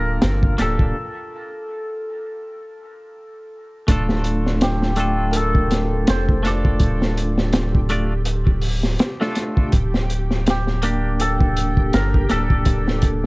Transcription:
0.00 0.19 D1 medium
0.00 0.55 A#3 medium
0.00 0.56 D4 medium
0.00 1.78 F4 medium
0.00 0.56 G4 medium
0.00 0.68 A#4 loud
0.22 0.56 G1 loud
0.22 snare loud
0.22 closed hi-hat medium
0.43 kick loud
0.58 0.92 D1 loud
0.58 0.95 A#3 medium
0.58 0.96 D4 medium
0.58 0.96 G4 medium
0.58 3.54 A4 medium
0.58 0.97 A4 medium
0.58 snare soft
0.58 closed hi-hat medium
0.79 kick medium
3.88 6.05 D1 medium
3.88 4.91 A3 loud
3.88 4.92 D4 medium
3.88 4.93 F4 medium
3.88 13.26 G4 medium
3.88 4.93 A4 loud
3.88 kick loud
3.88 closed hi-hat loud
4.09 snare soft
4.24 closed hi-hat medium
4.47 snare soft
4.61 7.77 G4 medium
4.61 snare loud
4.61 closed hi-hat medium
4.83 snare soft
4.96 6.40 A3 medium
4.96 6.40 D4 medium
4.96 6.41 F4 medium
4.96 closed hi-hat medium
5.00 6.42 A4 medium
5.31 5.42 A#4 medium
5.31 closed hi-hat medium
5.36 8.29 A4 medium
5.55 kick medium
5.71 snare medium
5.71 closed hi-hat medium
6.07 6.79 F1 medium
6.07 6.19 C5 loud
6.07 snare loud
6.07 closed hi-hat medium
6.29 kick medium
6.43 7.86 A3 medium
6.43 7.87 D4 medium
6.43 7.88 F4 medium
6.43 7.88 A4 medium
6.43 snare soft
6.43 closed hi-hat medium
6.47 8.93 D5 loud
6.65 kick medium
6.80 8.97 D1 loud
6.80 kick loud
6.80 closed hi-hat medium
7.02 snare medium
7.17 closed hi-hat medium
7.38 snare medium
7.53 snare loud
7.53 closed hi-hat medium
7.75 kick medium
7.89 8.12 A3 medium
7.89 8.13 D4 medium
7.89 8.13 F4 medium
7.89 8.13 D5 medium
7.89 closed hi-hat medium
8.25 closed hi-hat medium
8.47 kick medium
8.62 open hi-hat medium
8.84 snare soft
8.99 snare loud
8.99 closed hi-hat medium
9.21 9.72 A3 loud
9.21 9.72 D4 medium
9.21 9.72 F4 medium
9.21 9.72 A4 loud
9.21 snare soft
9.35 snare soft
9.35 closed hi-hat medium
9.57 kick medium
9.72 11.90 D1 medium
9.72 kick loud
9.72 closed hi-hat medium
9.94 snare medium
10.10 closed hi-hat medium
10.30 snare soft
10.46 13.26 G4 medium
10.46 snare loud
10.46 closed hi-hat medium
10.67 snare soft
10.82 12.26 A#3 medium
10.82 12.26 D4 medium
10.82 12.27 G4 medium
10.82 closed hi-hat medium
11.20 12.00 A4 loud
11.20 closed hi-hat medium
11.41 kick loud
11.57 closed hi-hat medium
11.77 kick medium
11.93 12.26 G1 loud
11.93 12.37 A#4 loud
11.93 snare loud
11.93 closed hi-hat medium
12.14 kick medium
12.29 12.63 D1 medium
12.29 13.26 A#3 medium
12.29 13.26 D4 medium
12.29 13.26 G4 medium
12.29 13.26 A4 loud
12.29 13.26 A4 medium
12.29 snare soft
12.29 closed hi-hat medium
12.50 kick medium
12.65 13.26 D1 medium
12.65 kick loud
12.65 closed hi-hat medium
12.88 snare medium
13.02 kick medium
13.02 closed hi-hat medium

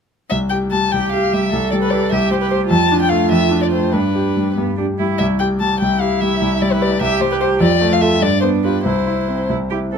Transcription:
0.30 0.92 C2 soft
0.30 0.38 E5 medium
0.50 0.84 G4 soft
0.50 0.58 G5 soft
0.71 1.04 G3 soft
0.71 0.93 A5 medium
0.92 1.51 C2 soft
0.92 1.49 G4 soft
0.92 1.11 G5 medium
1.12 1.45 G4 soft
1.12 1.35 F5 soft
1.33 1.53 G3 soft
1.33 1.71 E5 soft
1.53 2.10 C2 soft
1.53 2.14 A4 soft
1.71 2.04 G3 soft
1.71 1.75 D5 medium
1.82 1.92 B4 soft
1.91 2.10 G4 soft
1.91 2.10 B4 soft
1.91 2.11 D5 soft
2.12 2.69 C2 soft
2.12 2.70 G4 soft
2.12 2.31 E5 medium
2.31 2.63 G3 soft
2.31 2.35 C5 medium
2.42 2.50 B4 soft
2.50 2.69 G4 soft
2.50 2.58 C5 medium
2.50 2.69 C5 soft
2.70 3.30 F2 soft
2.70 3.95 F4 soft
2.70 2.99 A5 medium
2.92 3.23 D4 soft
3.02 3.11 G5 medium
3.09 3.43 A3 soft
3.09 3.30 F5 medium
3.31 3.91 F2 soft
3.31 3.61 E5 medium
3.51 3.84 D4 soft
3.62 3.66 D5 soft
3.71 3.93 A3 soft
3.71 3.94 C5 soft
3.93 4.56 G2 soft
3.93 4.52 D4 soft
3.93 4.56 B4 soft
4.15 4.48 G4 soft
4.37 4.69 G3 soft
4.56 5.18 G2 soft
4.56 4.75 B3 soft
4.77 4.85 D4 soft
4.77 5.11 G4 soft
4.98 5.19 G3 soft
4.98 5.18 E4 soft
5.18 5.80 C2 soft
5.18 5.26 E5 medium
5.39 5.73 G4 soft
5.39 5.47 G5 medium
5.60 5.93 G3 soft
5.60 5.79 A5 soft
5.80 6.40 C2 soft
5.80 6.97 E4 soft
5.80 6.02 G5 medium
6.00 6.33 G4 soft
6.00 6.23 F5 soft
6.21 6.41 G3 soft
6.21 6.64 E5 medium
6.42 6.99 C2 soft
6.62 6.93 G3 soft
6.62 6.74 D5 medium
6.72 6.83 B4 soft
6.81 6.99 G4 soft
6.81 6.99 B4 soft
6.81 7.01 D5 medium
7.00 7.58 C2 soft
7.00 7.62 G4 medium
7.00 7.23 E5 medium
7.21 7.52 G3 soft
7.21 7.31 C5 medium
7.32 7.36 B4 medium
7.41 7.59 G4 soft
7.41 7.58 C5 soft
7.41 7.49 C5 medium
7.60 8.19 F2 medium
7.60 8.21 F4 soft
7.60 7.94 D5 medium
7.81 8.13 A3 soft
7.93 8.03 F5 medium
8.01 8.20 F4 soft
8.01 8.20 A4 soft
8.01 8.24 E5 medium
8.21 8.82 G2 soft
8.21 8.83 D4 soft
8.21 8.41 D5 medium
8.41 8.76 B3 soft
8.41 8.49 C5 medium
8.64 8.83 F4 soft
8.64 8.83 G4 soft
8.64 8.84 B4 soft
8.85 9.48 C2 soft
8.85 9.43 E4 soft
8.85 9.48 C5 soft
9.07 9.40 E4 soft
9.28 9.62 C4 soft
9.49 9.98 C2 soft
9.49 9.57 E4 soft
9.70 9.98 E4 soft
9.70 9.78 G4 soft
9.92 9.98 C4 soft
9.92 9.98 A4 soft

